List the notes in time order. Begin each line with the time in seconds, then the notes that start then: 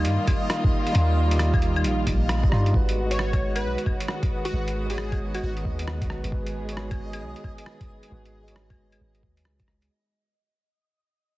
Already playing: D#3 G3 A#3 D#4 F4 G4 D#5
0.05 G2, closed hi-hat
0.27 kick, closed hi-hat, claves
0.50 cross-stick, closed hi-hat
0.64 kick
0.87 closed hi-hat
0.92 D#2 G3 D#4 F4, closed hi-hat
1.27 G3
1.31 D#4, closed hi-hat
1.35 G4, cross-stick, closed hi-hat
1.54 kick, claves
1.62 closed hi-hat
1.76 claves
1.83 A#1, closed hi-hat
2.07 A#1, kick, closed hi-hat
2.29 cross-stick, closed hi-hat
2.43 kick
2.49 G2 G3 D#4 F4, cross-stick
2.66 closed hi-hat
2.72 G#1 D#3 G#3 B3 F#4 B4 D#5, kick
2.89 closed hi-hat
3.06 G#3 F#4
3.11 C#5, closed hi-hat
3.19 cross-stick
3.33 kick, closed hi-hat, claves
3.55 B4, closed hi-hat, claves
3.64 B1
3.78 closed hi-hat
3.86 kick, claves
4.00 closed hi-hat
4.08 cross-stick
4.23 kick, closed hi-hat
4.45 F#4, closed hi-hat
4.51 G#1 G#3 F#4
4.55 B4
4.68 closed hi-hat
4.86 G#3 F#4
4.90 G#4 C#5, closed hi-hat
4.98 cross-stick
5.12 kick, closed hi-hat, claves
5.35 F#4, closed hi-hat, claves
5.43 G#1 F#4
5.57 closed hi-hat
5.65 D#2, kick
5.79 closed hi-hat
5.88 cross-stick
6.02 kick, closed hi-hat
6.10 B1, cross-stick
6.24 F#1, closed hi-hat
6.30 G#1 G#3 F#4 G#4 B4, kick
6.46 closed hi-hat
6.65 G#3 F#4, closed hi-hat
6.73 C#5
6.77 cross-stick
6.91 kick, closed hi-hat, claves
7.13 closed hi-hat, claves
7.22 B1
7.36 closed hi-hat
7.44 kick, claves
7.58 closed hi-hat
7.66 cross-stick
7.81 kick, closed hi-hat
8.03 closed hi-hat
8.09 G#1 G#3 F#4 B4
8.25 closed hi-hat
8.43 G#3
8.48 F#4, closed hi-hat
8.52 C#5
8.56 cross-stick
8.70 kick, closed hi-hat, claves
8.92 closed hi-hat, claves
9.01 G#1
9.15 closed hi-hat
9.23 D#2, kick
9.37 closed hi-hat
9.45 C#2, cross-stick
9.60 kick, closed hi-hat
9.68 cross-stick
9.82 closed hi-hat